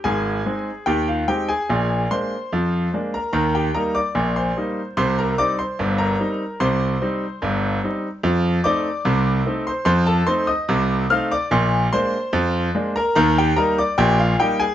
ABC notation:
X:1
M:2/4
L:1/16
Q:1/4=73
K:Eb
V:1 name="Grand piano"
[Aa]4 [Gg] [Ff] [Gg] [Aa]- | [Aa]2 [cc']4- [cc'] [Bb] | [Bb] [Gg] [Bb] [dd']2 [cc']3 | [cc'] [Bb] [dd'] [cc']2 [Bb]3 |
[cc']4 z4 | z2 [dd']4- [dd'] [cc'] | [cc'] [=A=a] [cc'] [ee']3 [ff'] [dd'] | z2 [cc']4- [cc'] [Bb] |
[Bb] [Gg] [Bb] [dd'] [Gg] [Ff] [Gg] [Aa] |]
V:2 name="Grand piano" clef=bass
[A,,,A,,]2 [A,CE]2 [E,,E,]2 [A,CE]2 | [B,,,B,,]2 [A,B,D]2 [F,,F,]2 [A,B,D]2 | [E,,E,]2 [G,B,E]2 [B,,,B,,]2 [G,B,E]2 | [C,,C,]2 [G,CE]2 [G,,,G,,]2 [G,CE]2 |
[C,,C,]2 [G,CE]2 [G,,,G,,]2 [G,CE]2 | [F,,F,]2 [=A,CE]2 [C,,C,]2 [A,CE]2 | [F,,F,]2 [=A,CE]2 [C,,C,]2 [A,CE]2 | [B,,,B,,]2 [A,B,D]2 [F,,F,]2 [A,B,D]2 |
[E,,E,]2 [G,B,E]2 [B,,,B,,]2 [G,B,E]2 |]